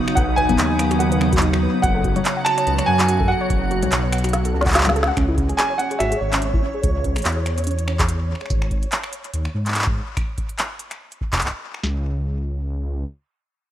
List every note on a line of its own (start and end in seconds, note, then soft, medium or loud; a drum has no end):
0.00 5.13 C#3 medium
0.00 1.80 F#3 medium
0.00 5.13 B3 medium
0.00 1.79 D#4 loud
0.00 0.19 C#6 loud
0.08 0.16 F#4 medium
0.08 finger snap medium
0.15 0.51 B1 loud
0.15 0.25 D#4 medium
0.15 0.20 F#5 medium
0.15 kick loud
0.15 closed hi-hat medium
0.28 0.35 F#4 medium
0.36 0.43 B4 medium
0.36 0.95 G#5 loud
0.36 kick soft
0.36 closed hi-hat soft
0.42 kick soft
0.45 kick soft
0.49 0.55 F#1 medium
0.49 0.56 B3 medium
0.49 kick medium
0.49 closed hi-hat soft
0.49 low conga medium
0.52 kick medium
0.55 1.67 D#2 medium
0.55 0.67 B3 medium
0.55 kick medium
0.55 clap loud
0.55 closed hi-hat medium
0.70 0.77 D#4 medium
0.79 0.88 B3 medium
0.79 finger snap medium
0.79 closed hi-hat medium
0.91 0.98 F#4 loud
0.91 finger snap soft
0.91 closed hi-hat soft
0.99 1.05 F#4 medium
0.99 1.38 F#5 medium
0.99 closed hi-hat medium
1.12 1.19 B4 medium
1.12 closed hi-hat medium
1.21 1.32 B3 medium
1.21 finger snap medium
1.33 1.41 F#4 medium
1.33 kick loud
1.33 closed hi-hat soft
1.37 clap loud
1.42 1.50 D#4 medium
1.42 closed hi-hat medium
1.53 1.60 F#4 medium
1.53 finger snap medium
1.63 1.68 B4 medium
1.74 1.81 B3 medium
1.82 2.20 F#1 loud
1.82 5.13 F#3 medium
1.82 1.92 F#4 medium
1.82 5.13 F#4 medium
1.82 2.41 F#5 loud
1.82 kick loud
1.82 closed hi-hat medium
1.95 2.02 A4 medium
2.04 2.13 F#4 medium
2.04 kick medium
2.04 closed hi-hat soft
2.16 2.23 C#5 loud
2.16 closed hi-hat medium
2.16 low conga loud
2.25 2.30 C#5 medium
2.25 clap loud
2.25 closed hi-hat medium
2.37 2.44 F#5 medium
2.45 2.57 F#4 medium
2.45 2.88 A5 loud
2.45 finger snap medium
2.45 closed hi-hat medium
2.58 2.66 C#5 medium
2.58 finger snap soft
2.58 closed hi-hat medium
2.67 2.81 C#2 medium
2.67 2.75 B4 medium
2.67 closed hi-hat medium
2.78 2.85 C#5 medium
2.78 finger snap medium
2.78 closed hi-hat medium
2.86 3.34 F#2 medium
2.86 2.93 F#5 medium
2.86 3.30 G#5 loud
2.99 3.06 F#4 medium
2.99 clap loud
2.99 closed hi-hat soft
3.08 3.17 F#4 medium
3.08 closed hi-hat medium
3.20 3.27 A4 medium
3.20 kick loud
3.28 3.38 F#4 medium
3.28 4.70 F#5 medium
3.41 3.48 C#5 loud
3.50 3.84 F#1 loud
3.50 3.55 C#5 medium
3.50 kick loud
3.50 closed hi-hat medium
3.62 3.69 F#5 medium
3.71 3.82 F#4 medium
3.71 closed hi-hat soft
3.83 3.88 C#2 medium
3.83 3.91 C#5 medium
3.83 closed hi-hat medium
3.83 low conga loud
3.92 4.54 B1 medium
3.92 4.00 B4 medium
3.92 clap loud
3.92 closed hi-hat medium
4.03 4.10 C#5 medium
4.12 4.18 F#5 medium
4.12 finger snap medium
4.12 closed hi-hat medium
4.18 closed hi-hat medium
4.24 4.31 F#4 medium
4.24 finger snap soft
4.24 closed hi-hat medium
4.29 closed hi-hat soft
4.33 4.42 F#4 medium
4.33 snare medium
4.33 closed hi-hat medium
4.45 4.52 A4 medium
4.45 closed hi-hat medium
4.54 5.11 C#2 loud
4.54 4.63 A4 medium
4.61 snare medium
4.66 4.70 F#5 medium
4.66 kick loud
4.66 clap medium
4.66 closed hi-hat soft
4.68 clap medium
4.68 closed hi-hat soft
4.71 clap medium
4.71 closed hi-hat soft
4.73 4.86 F#4 loud
4.73 snare medium
4.73 clap medium
4.73 closed hi-hat soft
4.75 clap medium
4.75 closed hi-hat medium
4.78 clap medium
4.81 clap loud
4.84 4.94 G#4 medium
4.84 clap loud
4.84 low conga medium
4.89 snare medium
4.96 5.01 A4 loud
4.96 closed hi-hat soft
5.03 snare loud
5.08 5.12 F#5 loud
5.17 5.53 C#2 loud
5.17 5.25 C#4 medium
5.17 8.51 C#5 medium
5.17 finger snap medium
5.17 kick loud
5.17 closed hi-hat medium
5.28 5.35 E4 medium
5.38 5.46 C#4 medium
5.38 kick medium
5.38 closed hi-hat soft
5.49 5.56 G#4 loud
5.49 closed hi-hat medium
5.57 5.64 G#4 medium
5.57 5.77 G#5 loud
5.57 finger snap medium
5.57 clap loud
5.57 closed hi-hat medium
5.70 5.77 C#5 medium
5.78 5.90 C#4 medium
5.78 6.00 F#5 medium
5.78 closed hi-hat medium
5.91 6.00 G#4 medium
5.91 closed hi-hat medium
5.99 6.14 G#1 medium
5.99 6.09 F#4 medium
5.99 6.79 E5 medium
5.99 finger snap medium
5.99 closed hi-hat medium
6.12 6.19 G#4 medium
6.12 closed hi-hat medium
6.21 6.67 G#1 medium
6.21 6.26 C#5 medium
6.33 6.39 C#4 medium
6.33 finger snap medium
6.33 clap loud
6.33 closed hi-hat medium
6.42 6.50 C#4 medium
6.42 closed hi-hat medium
6.54 6.60 E4 medium
6.54 kick loud
6.63 6.71 C#4 medium
6.74 6.81 G#4 loud
6.83 7.17 C#2 loud
6.83 6.89 G#4 medium
6.83 kick loud
6.83 closed hi-hat medium
6.95 7.02 C#5 medium
7.04 7.15 C#4 medium
7.04 kick medium
7.04 closed hi-hat soft
7.16 7.22 G#1 medium
7.16 7.25 G#4 medium
7.16 finger snap medium
7.16 closed hi-hat soft
7.18 closed hi-hat soft
7.22 clap loud
7.22 closed hi-hat soft
7.25 8.34 E2 medium
7.25 7.34 F#4 medium
7.25 closed hi-hat medium
7.32 closed hi-hat soft
7.37 7.44 G#4 medium
7.46 7.51 C#5 medium
7.46 finger snap medium
7.46 closed hi-hat medium
7.58 7.64 C#4 medium
7.58 closed hi-hat soft
7.64 closed hi-hat soft
7.67 7.75 C#4 medium
7.67 closed hi-hat medium
7.71 closed hi-hat soft
7.79 7.85 E4 medium
7.79 closed hi-hat medium
7.88 7.96 C#4 medium
7.88 finger snap medium
7.99 8.06 G#4 loud
7.99 kick loud
7.99 clap loud
7.99 closed hi-hat medium
8.09 closed hi-hat medium
8.20 8.27 C#5 medium
8.29 8.40 C#4 medium
8.35 finger snap soft
8.41 8.50 G#4 medium
8.41 finger snap soft
8.46 finger snap soft
8.50 8.86 G#1 loud
8.50 kick loud
8.50 closed hi-hat medium
8.62 finger snap soft
8.71 kick medium
8.71 closed hi-hat soft
8.83 closed hi-hat medium
8.92 clap loud
8.92 closed hi-hat medium
9.04 finger snap medium
9.13 closed hi-hat medium
9.24 closed hi-hat medium
9.34 9.48 D#2 medium
9.34 closed hi-hat medium
9.45 finger snap soft
9.54 10.01 G#2 medium
9.66 clap medium
9.66 closed hi-hat medium
9.68 clap medium
9.72 finger snap soft
9.72 clap medium
9.75 finger snap soft
9.75 clap medium
9.75 closed hi-hat medium
9.79 finger snap soft
9.79 clap medium
9.82 finger snap soft
9.82 clap loud
9.87 kick loud
10.17 finger snap medium
10.17 kick loud
10.17 closed hi-hat medium
10.38 kick medium
10.38 closed hi-hat soft
10.49 closed hi-hat soft
10.59 finger snap soft
10.59 clap loud
10.59 closed hi-hat medium
10.79 closed hi-hat medium
10.91 finger snap soft
10.91 closed hi-hat soft
11.12 closed hi-hat soft
11.21 kick medium
11.33 finger snap soft
11.33 kick medium
11.33 clap loud
11.33 closed hi-hat soft
11.35 finger snap soft
11.35 kick medium
11.37 finger snap soft
11.37 kick medium
11.37 clap medium
11.40 finger snap medium
11.40 kick medium
11.42 kick soft
11.42 closed hi-hat medium
11.45 kick soft
11.45 clap medium
11.48 kick soft
11.51 kick soft
11.74 finger snap soft
11.83 13.04 C#2 medium
11.83 snare loud